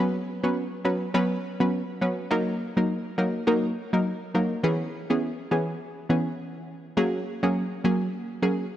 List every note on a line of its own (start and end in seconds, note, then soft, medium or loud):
0.00 0.40 F#3 medium
0.00 0.40 B3 medium
0.00 0.40 C#4 medium
0.00 0.40 B4 loud
0.44 0.64 F#3 medium
0.44 0.65 B3 medium
0.44 0.65 C#4 medium
0.44 0.65 B4 medium
0.85 1.08 F#3 medium
0.85 1.08 B3 medium
0.85 1.08 C#4 medium
0.85 1.08 B4 medium
1.14 1.37 F#3 medium
1.14 1.37 B3 medium
1.14 1.38 C#4 medium
1.14 1.38 B4 loud
1.60 1.81 F#3 medium
1.60 1.81 B3 medium
1.60 1.81 C#4 medium
1.60 1.81 B4 medium
2.01 2.25 F#3 medium
2.01 2.25 B3 medium
2.01 2.25 C#4 medium
2.01 2.25 B4 medium
2.30 2.73 F#3 medium
2.30 2.73 A#3 medium
2.30 2.73 D#4 medium
2.30 2.73 A#4 loud
2.76 2.97 F#3 medium
2.76 2.97 A#3 medium
2.76 2.98 D#4 medium
2.76 2.98 A#4 medium
3.18 3.41 F#3 medium
3.18 3.41 A#3 medium
3.18 3.41 D#4 medium
3.18 3.41 A#4 medium
3.47 3.70 F#3 loud
3.47 3.70 A#3 medium
3.47 3.70 D#4 medium
3.47 3.70 A#4 loud
3.93 4.14 F#3 medium
3.93 4.14 A#3 medium
3.93 4.14 D#4 medium
3.93 4.14 A#4 medium
4.35 4.58 F#3 medium
4.35 4.58 A#3 medium
4.35 4.58 D#4 medium
4.35 4.58 A#4 medium
4.64 4.87 E3 medium
4.64 4.87 B3 medium
4.64 4.87 C#4 medium
4.64 4.87 G#4 loud
5.10 5.31 E3 medium
5.10 5.31 B3 medium
5.10 5.31 C#4 medium
5.10 5.31 G#4 medium
5.51 5.74 E3 medium
5.51 5.74 B3 medium
5.51 5.74 C#4 medium
5.51 5.74 G#4 medium
6.09 6.32 E3 medium
6.09 6.33 B3 medium
6.09 6.33 C#4 medium
6.09 6.33 G#4 medium
6.97 7.20 F#3 medium
6.97 7.20 A#3 medium
6.97 7.20 C#4 medium
6.97 7.20 G#4 loud
7.43 7.64 F#3 medium
7.43 7.64 A#3 medium
7.43 7.64 C#4 medium
7.43 7.64 G#4 medium
7.84 8.07 F#3 medium
7.84 8.07 A#3 medium
7.84 8.07 C#4 medium
7.84 8.08 G#4 medium
8.42 8.65 F#3 medium
8.42 8.65 A#3 medium
8.42 8.66 C#4 medium
8.42 8.66 G#4 medium